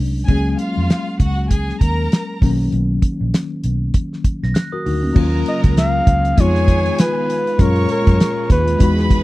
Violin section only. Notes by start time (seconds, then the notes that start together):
0.28 G#4 G#5
0.59 F4 F5
1.20 F#4 F#5
1.51 G#4 G#5
1.80 A#4 A#5
5.15 A#4 A#5
6.38 G#4 G#5
7.60 C#5 C#6
8.80 B4 B5